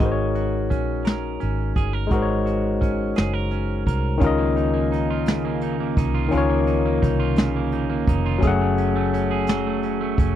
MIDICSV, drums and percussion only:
0, 0, Header, 1, 2, 480
1, 0, Start_track
1, 0, Key_signature, -5, "major"
1, 0, Tempo, 701754
1, 2, Time_signature, 6, 3, 24, 8
1, 7084, End_track
2, 0, Start_track
2, 0, Title_t, "Drums"
2, 0, Note_on_c, 9, 42, 55
2, 2, Note_on_c, 9, 36, 97
2, 65, Note_off_c, 9, 42, 0
2, 70, Note_off_c, 9, 36, 0
2, 240, Note_on_c, 9, 42, 52
2, 309, Note_off_c, 9, 42, 0
2, 486, Note_on_c, 9, 36, 78
2, 488, Note_on_c, 9, 42, 60
2, 554, Note_off_c, 9, 36, 0
2, 557, Note_off_c, 9, 42, 0
2, 716, Note_on_c, 9, 42, 71
2, 732, Note_on_c, 9, 38, 94
2, 784, Note_off_c, 9, 42, 0
2, 800, Note_off_c, 9, 38, 0
2, 961, Note_on_c, 9, 42, 47
2, 1030, Note_off_c, 9, 42, 0
2, 1203, Note_on_c, 9, 36, 87
2, 1211, Note_on_c, 9, 42, 65
2, 1272, Note_off_c, 9, 36, 0
2, 1279, Note_off_c, 9, 42, 0
2, 1443, Note_on_c, 9, 36, 96
2, 1444, Note_on_c, 9, 42, 65
2, 1511, Note_off_c, 9, 36, 0
2, 1512, Note_off_c, 9, 42, 0
2, 1687, Note_on_c, 9, 42, 55
2, 1756, Note_off_c, 9, 42, 0
2, 1928, Note_on_c, 9, 36, 88
2, 1934, Note_on_c, 9, 42, 64
2, 1996, Note_off_c, 9, 36, 0
2, 2002, Note_off_c, 9, 42, 0
2, 2158, Note_on_c, 9, 42, 73
2, 2174, Note_on_c, 9, 38, 106
2, 2227, Note_off_c, 9, 42, 0
2, 2243, Note_off_c, 9, 38, 0
2, 2400, Note_on_c, 9, 42, 49
2, 2469, Note_off_c, 9, 42, 0
2, 2645, Note_on_c, 9, 36, 82
2, 2653, Note_on_c, 9, 42, 74
2, 2713, Note_off_c, 9, 36, 0
2, 2722, Note_off_c, 9, 42, 0
2, 2881, Note_on_c, 9, 42, 71
2, 2883, Note_on_c, 9, 36, 108
2, 2949, Note_off_c, 9, 42, 0
2, 2951, Note_off_c, 9, 36, 0
2, 3125, Note_on_c, 9, 42, 51
2, 3194, Note_off_c, 9, 42, 0
2, 3373, Note_on_c, 9, 42, 71
2, 3441, Note_off_c, 9, 42, 0
2, 3597, Note_on_c, 9, 42, 83
2, 3613, Note_on_c, 9, 38, 126
2, 3665, Note_off_c, 9, 42, 0
2, 3681, Note_off_c, 9, 38, 0
2, 3839, Note_on_c, 9, 42, 55
2, 3908, Note_off_c, 9, 42, 0
2, 4083, Note_on_c, 9, 36, 104
2, 4089, Note_on_c, 9, 42, 76
2, 4152, Note_off_c, 9, 36, 0
2, 4158, Note_off_c, 9, 42, 0
2, 4320, Note_on_c, 9, 42, 68
2, 4388, Note_off_c, 9, 42, 0
2, 4562, Note_on_c, 9, 42, 54
2, 4630, Note_off_c, 9, 42, 0
2, 4806, Note_on_c, 9, 36, 93
2, 4811, Note_on_c, 9, 42, 69
2, 4875, Note_off_c, 9, 36, 0
2, 4879, Note_off_c, 9, 42, 0
2, 5033, Note_on_c, 9, 42, 73
2, 5049, Note_on_c, 9, 38, 108
2, 5102, Note_off_c, 9, 42, 0
2, 5117, Note_off_c, 9, 38, 0
2, 5279, Note_on_c, 9, 42, 62
2, 5347, Note_off_c, 9, 42, 0
2, 5523, Note_on_c, 9, 36, 106
2, 5529, Note_on_c, 9, 42, 87
2, 5591, Note_off_c, 9, 36, 0
2, 5597, Note_off_c, 9, 42, 0
2, 5760, Note_on_c, 9, 42, 68
2, 5763, Note_on_c, 9, 36, 115
2, 5829, Note_off_c, 9, 42, 0
2, 5831, Note_off_c, 9, 36, 0
2, 6004, Note_on_c, 9, 42, 58
2, 6073, Note_off_c, 9, 42, 0
2, 6253, Note_on_c, 9, 42, 75
2, 6321, Note_off_c, 9, 42, 0
2, 6477, Note_on_c, 9, 42, 88
2, 6493, Note_on_c, 9, 38, 127
2, 6545, Note_off_c, 9, 42, 0
2, 6561, Note_off_c, 9, 38, 0
2, 6722, Note_on_c, 9, 42, 62
2, 6791, Note_off_c, 9, 42, 0
2, 6963, Note_on_c, 9, 36, 106
2, 6970, Note_on_c, 9, 42, 81
2, 7032, Note_off_c, 9, 36, 0
2, 7038, Note_off_c, 9, 42, 0
2, 7084, End_track
0, 0, End_of_file